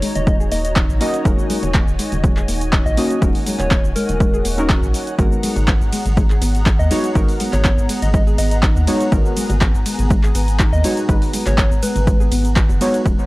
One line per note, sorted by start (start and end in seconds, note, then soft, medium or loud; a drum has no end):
0.00 0.07 G#3 medium
0.00 0.97 A#3 medium
0.00 0.98 C#4 medium
0.00 0.98 D#4 medium
0.00 7.09 D#4 medium
0.00 0.98 F#4 medium
0.00 5.15 F#4 medium
0.00 0.98 A#4 medium
0.00 0.13 C#5 loud
0.00 5.15 C#5 medium
0.00 6.58 C#5 loud
0.00 5.15 D#5 medium
0.00 13.26 F#5 medium
0.00 1.21 A#5 medium
0.00 open hi-hat loud
0.00 cabasa medium
0.15 0.49 D#1 loud
0.15 0.23 D#5 medium
0.15 closed hi-hat medium
0.15 high conga medium
0.15 low conga medium
0.15 cabasa soft
0.27 0.39 G#3 loud
0.27 0.35 D#5 medium
0.27 kick loud
0.27 closed hi-hat medium
0.27 cabasa soft
0.40 0.47 G#4 loud
0.40 cabasa soft
0.52 0.86 D#1 loud
0.52 0.64 A#3 medium
0.52 0.60 D#5 medium
0.52 open hi-hat loud
0.52 cabasa medium
0.65 0.72 D#5 medium
0.65 closed hi-hat medium
0.65 cabasa soft
0.76 0.84 D#4 medium
0.76 kick loud
0.76 clap loud
0.76 closed hi-hat medium
0.76 cabasa soft
0.89 0.99 A#1 medium
0.89 cabasa soft
1.00 1.22 A#3 loud
1.00 1.22 C#4 medium
1.00 1.22 D#4 medium
1.00 1.23 F#4 medium
1.00 1.23 D#5 loud
1.00 open hi-hat loud
1.00 high conga medium
1.00 cabasa medium
1.14 closed hi-hat medium
1.14 cabasa soft
1.24 1.36 D#1 loud
1.24 1.38 G#3 loud
1.24 2.94 A#3 medium
1.24 2.94 C#4 medium
1.24 2.95 D#4 medium
1.24 2.95 F#4 medium
1.24 2.95 A#4 medium
1.24 5.15 G#5 medium
1.24 kick loud
1.24 closed hi-hat soft
1.24 cabasa soft
1.39 cabasa soft
1.50 1.62 G#3 medium
1.50 open hi-hat loud
1.50 high conga medium
1.50 cabasa medium
1.63 1.83 D#1 loud
1.63 closed hi-hat medium
1.63 high bongo medium
1.63 low conga medium
1.63 cabasa soft
1.74 1.83 A#3 medium
1.74 kick loud
1.74 clap loud
1.74 closed hi-hat medium
1.74 cabasa soft
1.88 1.97 D#1 medium
1.88 cabasa soft
1.99 2.04 G#3 medium
1.99 open hi-hat loud
1.99 cabasa medium
2.12 2.45 D#1 medium
2.12 closed hi-hat medium
2.12 high conga medium
2.12 low conga medium
2.12 cabasa soft
2.23 2.36 G#3 loud
2.23 kick loud
2.23 closed hi-hat medium
2.23 low conga medium
2.23 cabasa soft
2.37 2.44 G#4 loud
2.37 clap soft
2.37 cabasa soft
2.48 2.83 D#1 loud
2.48 2.61 A#3 medium
2.48 open hi-hat loud
2.48 high bongo soft
2.48 cabasa medium
2.61 closed hi-hat medium
2.61 cabasa soft
2.73 2.81 D#4 medium
2.73 kick loud
2.73 clap loud
2.73 closed hi-hat medium
2.73 cabasa soft
2.86 2.96 A#1 medium
2.86 3.06 D#5 medium
2.86 cabasa soft
2.97 3.19 A#3 loud
2.97 3.19 C#4 medium
2.97 3.19 D#4 medium
2.97 3.19 F#4 medium
2.97 3.19 D#5 loud
2.97 open hi-hat loud
2.97 high bongo soft
2.97 high conga medium
2.97 cabasa medium
3.10 closed hi-hat medium
3.10 cabasa soft
3.21 3.33 D#1 loud
3.21 3.34 G#3 loud
3.21 4.55 A#3 medium
3.21 4.55 C#4 medium
3.21 4.55 D#4 medium
3.21 4.56 F#4 medium
3.21 4.56 A#4 medium
3.21 kick loud
3.21 closed hi-hat soft
3.21 cabasa soft
3.35 open hi-hat medium
3.35 cabasa soft
3.46 3.59 G#3 medium
3.46 open hi-hat loud
3.46 high conga medium
3.46 cabasa medium
3.59 3.80 D#1 loud
3.59 3.95 C#5 loud
3.59 clap soft
3.59 closed hi-hat medium
3.59 high bongo medium
3.59 low conga medium
3.59 cabasa soft
3.71 3.79 A#3 medium
3.71 kick loud
3.71 clap loud
3.71 closed hi-hat medium
3.71 cabasa soft
3.84 3.94 D#1 medium
3.84 cabasa soft
3.96 4.01 G#3 medium
3.96 4.45 A#4 loud
3.96 open hi-hat loud
3.96 cabasa medium
4.09 4.42 D#1 medium
4.09 closed hi-hat medium
4.09 high conga medium
4.09 low conga medium
4.09 cabasa soft
4.20 4.33 G#3 loud
4.20 kick loud
4.20 closed hi-hat medium
4.20 cabasa soft
4.33 4.41 G#4 medium
4.33 cabasa soft
4.45 4.79 D#1 loud
4.45 4.57 A#3 medium
4.45 open hi-hat loud
4.45 cabasa medium
4.57 5.16 A#3 medium
4.57 5.16 C#4 medium
4.57 5.16 D#4 medium
4.57 5.16 F#4 medium
4.57 5.16 A#4 medium
4.57 closed hi-hat medium
4.57 cabasa soft
4.69 4.78 D#4 medium
4.69 kick loud
4.69 clap loud
4.69 closed hi-hat medium
4.69 cabasa soft
4.83 4.92 A#1 medium
4.83 cabasa soft
4.93 open hi-hat loud
4.93 high conga medium
4.93 cabasa medium
5.07 closed hi-hat medium
5.07 cabasa soft
5.18 5.30 G#1 loud
5.18 6.88 G#3 medium
5.18 5.31 G#3 loud
5.18 6.88 B3 medium
5.18 13.02 B3 medium
5.18 13.06 B3 medium
5.18 6.88 D#4 medium
5.18 6.88 F#4 medium
5.18 13.02 G#4 medium
5.18 6.88 A#4 medium
5.18 9.08 F#5 medium
5.18 13.02 A#5 medium
5.18 kick loud
5.18 closed hi-hat medium
5.18 cabasa soft
5.32 cabasa soft
5.43 5.56 G#3 medium
5.43 13.26 A#5 loud
5.43 open hi-hat loud
5.43 ride medium
5.43 high conga medium
5.43 cabasa medium
5.56 5.77 G#1 loud
5.56 closed hi-hat medium
5.56 high bongo medium
5.56 low conga medium
5.56 cabasa soft
5.68 5.76 B3 medium
5.68 kick loud
5.68 clap loud
5.68 closed hi-hat medium
5.68 cabasa soft
5.81 5.91 G#1 medium
5.81 cabasa soft
5.92 5.97 G#3 medium
5.92 open hi-hat loud
5.92 ride medium
5.92 cabasa medium
6.06 6.39 G#1 medium
6.06 closed hi-hat medium
6.06 high conga medium
6.06 low conga medium
6.06 cabasa soft
6.17 6.29 G#3 loud
6.17 kick loud
6.17 closed hi-hat medium
6.17 low conga medium
6.17 cabasa soft
6.30 6.37 G#4 loud
6.30 clap soft
6.30 cabasa soft
6.41 6.76 G#1 loud
6.41 6.54 B3 medium
6.41 open hi-hat loud
6.41 ride medium
6.41 high bongo soft
6.41 cabasa medium
6.55 closed hi-hat medium
6.55 cabasa soft
6.66 6.75 D#4 medium
6.66 kick loud
6.66 clap loud
6.66 closed hi-hat medium
6.66 cabasa soft
6.79 6.89 D#2 loud
6.79 6.99 D#5 loud
6.79 cabasa soft
6.90 7.12 G#3 loud
6.90 7.13 B3 medium
6.90 7.13 D#4 loud
6.90 7.13 F#4 medium
6.90 7.13 C#5 loud
6.90 open hi-hat loud
6.90 ride medium
6.90 high bongo soft
6.90 high conga medium
6.90 cabasa medium
7.04 closed hi-hat medium
7.04 cabasa soft
7.15 7.26 G#1 medium
7.15 8.84 G#3 medium
7.15 7.28 G#3 loud
7.15 8.85 B3 medium
7.15 8.85 D#4 medium
7.15 8.85 F#4 medium
7.15 8.85 A#4 medium
7.15 kick loud
7.15 closed hi-hat medium
7.15 cabasa soft
7.29 open hi-hat medium
7.29 cabasa soft
7.40 7.52 G#3 medium
7.40 open hi-hat loud
7.40 ride medium
7.40 high conga medium
7.40 cabasa medium
7.53 7.74 G#1 loud
7.53 8.00 C#5 loud
7.53 clap soft
7.53 closed hi-hat medium
7.53 high bongo medium
7.53 low conga loud
7.53 cabasa soft
7.65 7.73 B3 medium
7.65 kick loud
7.65 clap loud
7.65 closed hi-hat medium
7.65 cabasa medium
7.78 7.87 G#1 medium
7.78 cabasa soft
7.89 7.94 G#3 medium
7.89 open hi-hat loud
7.89 ride medium
7.89 cabasa medium
8.02 8.36 G#1 loud
8.02 8.10 D#5 medium
8.02 closed hi-hat medium
8.02 high conga medium
8.02 low conga medium
8.02 cabasa soft
8.14 8.26 G#3 loud
8.14 8.22 D#5 medium
8.14 kick loud
8.14 closed hi-hat medium
8.14 cabasa soft
8.27 8.34 G#4 loud
8.27 cabasa soft
8.38 8.73 G#1 loud
8.38 8.51 B3 medium
8.38 8.47 D#5 loud
8.38 open hi-hat loud
8.38 ride medium
8.38 cabasa medium
8.51 8.59 D#5 medium
8.51 closed hi-hat medium
8.51 cabasa soft
8.63 8.71 D#4 medium
8.63 kick loud
8.63 clap loud
8.63 closed hi-hat medium
8.63 cabasa soft
8.76 8.86 D#2 loud
8.76 cabasa soft
8.87 9.09 G#3 loud
8.87 9.09 B3 loud
8.87 9.09 D#4 medium
8.87 9.09 F#4 loud
8.87 9.10 C#5 loud
8.87 open hi-hat loud
8.87 ride medium
8.87 high conga medium
8.87 cabasa medium
9.01 closed hi-hat medium
9.01 cabasa soft
9.11 9.23 G#1 loud
9.11 10.81 G#3 medium
9.11 9.25 G#3 loud
9.11 10.81 B3 medium
9.11 10.81 D#4 medium
9.11 10.82 F#4 medium
9.11 10.82 A#4 medium
9.11 13.02 G#5 medium
9.11 kick loud
9.11 closed hi-hat medium
9.11 cabasa soft
9.26 cabasa soft
9.37 9.49 G#3 medium
9.37 open hi-hat loud
9.37 ride medium
9.37 high conga medium
9.37 cabasa medium
9.49 9.70 G#1 loud
9.49 closed hi-hat medium
9.49 high bongo medium
9.49 low conga medium
9.49 cabasa soft
9.61 9.70 B3 medium
9.61 kick loud
9.61 clap loud
9.61 closed hi-hat medium
9.61 cabasa soft
9.74 9.84 G#1 medium
9.74 cabasa soft
9.86 9.91 G#3 medium
9.86 open hi-hat loud
9.86 ride medium
9.86 cabasa medium
9.99 10.32 G#1 medium
9.99 closed hi-hat medium
9.99 high conga medium
9.99 low conga medium
9.99 cabasa soft
10.10 10.23 G#3 loud
10.10 kick loud
10.10 closed hi-hat medium
10.10 low conga medium
10.10 cabasa soft
10.23 10.31 G#4 loud
10.23 clap soft
10.23 cabasa soft
10.35 10.70 G#1 loud
10.35 10.47 B3 medium
10.35 open hi-hat loud
10.35 ride medium
10.35 high bongo soft
10.35 cabasa medium
10.48 closed hi-hat medium
10.48 cabasa soft
10.60 10.68 D#4 medium
10.60 kick loud
10.60 clap loud
10.60 closed hi-hat medium
10.60 cabasa soft
10.73 10.82 D#2 medium
10.73 10.93 D#5 loud
10.73 cabasa soft
10.84 11.06 G#3 loud
10.84 11.06 B3 medium
10.84 11.06 D#4 medium
10.84 11.06 F#4 medium
10.84 11.06 C#5 loud
10.84 open hi-hat loud
10.84 ride medium
10.84 high bongo soft
10.84 high conga medium
10.84 cabasa medium
10.97 closed hi-hat medium
10.97 cabasa soft
11.08 11.20 G#1 loud
11.08 12.78 G#3 medium
11.08 11.21 G#3 loud
11.08 12.78 B3 medium
11.08 12.78 D#4 medium
11.08 12.78 F#4 medium
11.08 12.79 B4 medium
11.08 kick loud
11.08 closed hi-hat medium
11.08 cabasa soft
11.22 open hi-hat medium
11.22 cabasa soft
11.33 11.46 G#3 medium
11.33 open hi-hat loud
11.33 ride medium
11.33 high conga medium
11.33 cabasa medium
11.46 11.67 G#1 loud
11.46 11.82 C#5 loud
11.46 clap soft
11.46 closed hi-hat medium
11.46 high bongo medium
11.46 low conga medium
11.46 cabasa soft
11.58 11.66 B3 medium
11.58 kick loud
11.58 clap loud
11.58 closed hi-hat medium
11.58 cabasa soft
11.71 11.81 G#1 medium
11.71 cabasa soft
11.83 11.88 G#3 medium
11.83 12.32 B4 loud
11.83 open hi-hat loud
11.83 ride medium
11.83 cabasa medium
11.95 12.29 G#1 medium
11.95 closed hi-hat medium
11.95 high conga medium
11.95 low conga medium
11.95 cabasa soft
12.07 12.20 G#3 loud
12.07 kick loud
12.07 closed hi-hat medium
12.07 cabasa soft
12.20 12.28 G#4 loud
12.20 cabasa soft
12.32 12.66 G#1 medium
12.32 12.44 B3 medium
12.32 open hi-hat loud
12.32 ride medium
12.32 cabasa medium
12.45 closed hi-hat medium
12.45 cabasa soft
12.56 12.65 D#4 medium
12.56 kick loud
12.56 clap loud
12.56 closed hi-hat medium
12.56 cabasa soft
12.69 12.79 F#1 medium
12.69 high bongo medium
12.69 cabasa soft
12.80 13.03 G#3 loud
12.80 13.03 B3 medium
12.80 13.03 D#4 loud
12.80 13.03 F#4 medium
12.80 13.03 C#5 loud
12.80 open hi-hat loud
12.80 ride medium
12.80 high conga medium
12.80 cabasa medium
12.94 closed hi-hat medium
12.94 cabasa soft
13.05 13.17 D#1 medium
13.05 13.18 G#3 loud
13.05 13.26 D#4 medium
13.05 kick loud
13.05 closed hi-hat soft
13.05 cabasa soft
13.19 cabasa soft